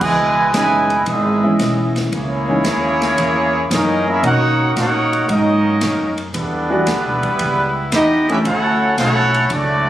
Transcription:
0.00 0.52 C#2 medium
0.00 0.51 B2 loud
0.00 0.51 E3 loud
0.00 0.52 G#3 loud
0.00 0.53 E4 medium
0.00 0.53 B4 loud
0.00 0.53 D#5 medium
0.00 0.53 G#5 loud
0.00 kick medium
0.00 crash loud
0.52 1.05 F#1 loud
0.52 1.02 B2 medium
0.52 1.02 E3 medium
0.52 0.87 E3 medium
0.52 1.02 G#3 medium
0.52 0.87 G#3 soft
0.52 0.87 B3 medium
0.52 0.87 C#4 medium
0.52 0.87 D#4 medium
0.52 1.03 E4 medium
0.52 1.03 B4 medium
0.52 1.03 D#5 medium
0.52 1.03 G#5 loud
0.52 snare medium
0.52 hi-hat pedal medium
0.52 ride medium
0.90 ride medium
1.06 1.58 G#1 loud
1.06 1.96 G#3 medium
1.06 1.96 B3 medium
1.06 1.96 E4 medium
1.06 1.96 G#4 medium
1.06 1.96 D#5 medium
1.06 1.96 E5 medium
1.06 ride medium
1.43 2.09 E3 medium
1.43 2.09 G#3 medium
1.43 2.09 B3 medium
1.43 2.09 C#4 medium
1.43 2.09 E4 medium
1.59 2.11 B1 medium
1.59 snare medium
1.59 hi-hat pedal medium
1.59 ride medium
1.96 snare medium
1.96 ride medium
2.12 2.63 C#2 loud
2.12 3.67 A#3 medium
2.12 3.68 A#3 medium
2.12 3.67 C#4 medium
2.12 3.67 E4 medium
2.12 3.68 E4 medium
2.12 3.67 G#4 medium
2.12 3.68 C#5 medium
2.12 ride medium
2.48 2.63 E3 medium
2.48 2.63 G#3 medium
2.48 2.63 A#3 medium
2.48 2.63 C#4 medium
2.48 2.64 D#4 medium
2.65 3.16 D#2 loud
2.65 snare medium
2.65 hi-hat pedal medium
2.65 ride medium
3.02 snare medium
3.02 ride medium
3.18 3.69 E2 medium
3.18 ride medium
3.71 4.22 F#2 loud
3.71 4.08 E3 medium
3.71 4.07 A#3 medium
3.71 4.09 C#4 medium
3.71 4.08 D#4 medium
3.71 4.09 G#4 medium
3.71 4.09 A#4 medium
3.71 4.09 D#5 loud
3.71 snare medium
3.71 hi-hat pedal medium
3.71 ride medium
4.08 4.23 A#3 medium
4.08 4.24 C#4 medium
4.08 4.25 C#4 medium
4.08 4.24 E4 loud
4.08 4.25 G#4 medium
4.08 4.25 A#4 medium
4.08 4.25 E5 loud
4.22 4.74 B2 loud
4.22 5.05 D#3 medium
4.22 5.05 A#3 medium
4.22 4.73 A#3 loud
4.22 5.05 B3 medium
4.22 5.05 C#4 medium
4.22 4.73 D#4 loud
4.22 5.05 F#4 medium
4.22 4.73 F#4 loud
4.22 4.74 F#5 loud
4.22 ride medium
4.26 4.74 D#4 loud
4.26 4.74 A#4 medium
4.26 4.74 C#5 loud
4.76 5.27 A#2 loud
4.76 5.26 A#3 medium
4.76 5.26 D#4 medium
4.76 5.27 D#4 medium
4.76 5.26 F#4 medium
4.76 5.27 A#4 medium
4.76 5.27 C#5 loud
4.76 5.27 F#5 loud
4.76 snare medium
4.76 hi-hat pedal medium
4.76 ride medium
5.13 ride medium
5.28 5.80 G#2 loud
5.28 6.17 F#3 medium
5.28 6.18 A#3 medium
5.28 6.19 C#4 medium
5.28 6.17 D#4 medium
5.28 6.19 F#4 medium
5.28 6.19 A#4 medium
5.28 6.19 D#5 medium
5.28 ride medium
5.81 6.33 F#2 loud
5.81 snare medium
5.81 hi-hat pedal medium
5.81 ride medium
6.18 ride medium
6.34 6.86 E2 medium
6.34 7.35 D3 medium
6.34 7.88 G3 medium
6.34 7.89 G3 medium
6.34 7.88 B3 medium
6.34 7.36 D4 medium
6.34 7.89 E4 medium
6.34 7.89 B4 medium
6.34 ride medium
6.70 6.85 E3 medium
6.70 6.85 G3 medium
6.70 6.85 B3 medium
6.70 6.85 D4 medium
6.70 6.85 F#4 medium
6.87 7.07 D2 loud
6.87 snare medium
6.87 hi-hat pedal medium
6.87 ride medium
7.05 7.22 B1 medium
7.23 7.39 G1 medium
7.23 kick medium
7.23 ride soft
7.39 7.91 C#2 loud
7.39 ride medium
7.92 8.43 E2 loud
7.92 8.27 B3 medium
7.92 8.27 D#4 medium
7.92 8.27 E4 medium
7.92 8.27 G4 medium
7.92 8.28 D#5 loud
7.92 snare medium
7.92 hi-hat pedal medium
7.92 ride medium
8.29 8.43 E3 medium
8.29 8.37 G3 medium
8.29 8.43 A3 medium
8.29 8.44 C#4 medium
8.29 8.37 C#4 medium
8.29 8.38 C#4 medium
8.29 8.44 D4 medium
8.29 8.36 E4 medium
8.29 8.38 G4 medium
8.29 8.44 A4 medium
8.29 8.38 B4 medium
8.29 8.38 E5 loud
8.29 ride medium
8.45 8.96 D2 loud
8.45 8.94 A3 loud
8.45 8.94 C#4 loud
8.45 8.95 E4 medium
8.45 8.94 F#4 loud
8.45 8.95 A4 loud
8.45 8.95 C#5 loud
8.45 8.95 F#5 loud
8.45 ride medium
8.98 9.49 B1 medium
8.98 9.47 A3 medium
8.98 9.47 C#4 medium
8.98 9.48 E4 medium
8.98 9.47 F#4 medium
8.98 9.48 A4 loud
8.98 9.47 C#5 loud
8.98 9.47 F#5 loud
8.98 snare medium
8.98 hi-hat pedal medium
8.98 ride medium
9.34 ride medium
9.50 9.89 C#2 medium
9.50 9.89 F#3 medium
9.50 9.89 A3 medium
9.50 9.89 D4 medium
9.50 9.89 F#4 medium
9.50 9.89 D5 loud
9.50 ride medium
9.54 9.89 A3 medium
9.54 9.89 E4 medium

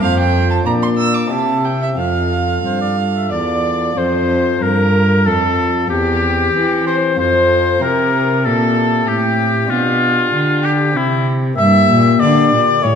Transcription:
0.00 0.63 F2 medium
0.00 0.65 F2 medium
0.00 0.62 C4 medium
0.00 0.62 F4 medium
0.00 0.64 A4 medium
0.00 0.68 C5 medium
0.00 0.18 F5 loud
0.19 0.50 G5 medium
0.51 0.57 A5 medium
0.63 1.30 A#2 medium
0.63 1.28 D4 medium
0.63 1.28 F4 soft
0.63 1.29 A#4 soft
0.63 1.33 D5 medium
0.63 0.73 A#5 medium
0.67 1.28 A#2 medium
0.82 0.89 C6 medium
0.98 1.16 E6 loud
1.14 1.29 D6 medium
1.26 1.91 C4 soft
1.26 1.94 E4 soft
1.26 1.95 G4 soft
1.26 1.66 A5 medium
1.30 1.93 C3 medium
1.30 1.96 C3 medium
1.30 1.98 E5 medium
1.65 1.81 G5 medium
1.82 1.89 E5 medium
1.93 2.60 C4 soft
1.93 3.92 F4 soft
1.93 3.92 A4 soft
1.97 2.60 F2 soft
1.97 2.64 F2 medium
1.97 3.29 F5 medium
1.97 2.57 F5 medium
2.64 3.27 G2 soft
2.64 3.30 G2 medium
2.64 2.81 C5 medium
2.81 2.96 D5 medium
3.17 3.31 E5 medium
3.31 3.96 E2 medium
3.31 3.94 E2 medium
3.31 4.00 D5 medium
3.31 3.99 D5 medium
3.93 4.58 C4 medium
3.93 5.85 F4 medium
3.93 5.86 A4 medium
3.97 4.58 F2 medium
3.97 4.64 C5 medium
3.97 4.61 C5 medium
4.61 5.22 G2 medium
4.61 5.28 G2 medium
4.61 5.28 A#4 medium
4.61 5.27 A#4 loud
5.26 5.86 F2 medium
5.26 5.90 F2 medium
5.26 5.89 A4 loud
5.26 5.89 A4 medium
5.86 7.12 C4 medium
5.86 7.13 G4 medium
5.86 6.85 G4 loud
5.86 6.85 G4 medium
5.91 6.51 E2 medium
5.91 6.54 E2 medium
6.55 7.15 E3 medium
6.55 7.17 E3 medium
6.87 7.18 C5 loud
6.87 6.95 C5 medium
7.14 7.77 C4 medium
7.14 7.79 F4 medium
7.14 7.80 A4 medium
7.14 7.83 C5 medium
7.19 7.81 F2 medium
7.19 7.79 F2 medium
7.19 7.81 C5 loud
7.79 8.48 C3 medium
7.79 9.65 C4 medium
7.79 9.66 E4 medium
7.79 9.66 G4 medium
7.79 8.45 A#4 medium
7.79 8.46 A#4 loud
7.83 8.42 C3 medium
8.45 9.07 A#2 medium
8.45 9.05 A#2 medium
8.45 9.09 A4 medium
8.45 9.08 A4 medium
9.07 9.69 A2 medium
9.07 9.67 A2 medium
9.07 9.68 G4 medium
9.07 9.71 G4 loud
9.67 10.90 D4 medium
9.67 10.62 F4 medium
9.67 10.67 F4 loud
9.67 10.91 G4 medium
9.71 10.32 B2 medium
9.71 10.29 B2 medium
10.34 10.97 D3 medium
10.34 10.92 D3 medium
10.63 10.71 G4 loud
10.63 10.98 G4 loud
10.92 11.58 C3 medium
10.92 11.55 C4 medium
10.92 11.54 G4 medium
10.96 11.55 C3 medium
10.96 11.27 E4 medium
10.96 11.28 E4 loud
11.55 12.78 A#3 medium
11.55 12.79 G4 medium
11.55 12.21 E5 loud
11.55 12.17 E5 loud
11.59 11.88 G2 medium
11.59 11.87 G2 medium
11.90 12.21 A#2 medium
11.90 12.19 A#2 medium
12.19 12.52 D3 medium
12.19 12.50 D3 medium
12.19 12.85 D5 loud
12.19 12.88 D5 medium
12.53 12.61 A#2 medium
12.53 12.81 A#2 medium
12.80 12.92 A2 medium
12.80 12.95 A3 medium
12.80 12.95 E4 medium
12.80 12.95 G4 medium
12.80 12.95 C#5 loud
12.85 12.95 A2 medium
12.85 12.95 C#5 medium

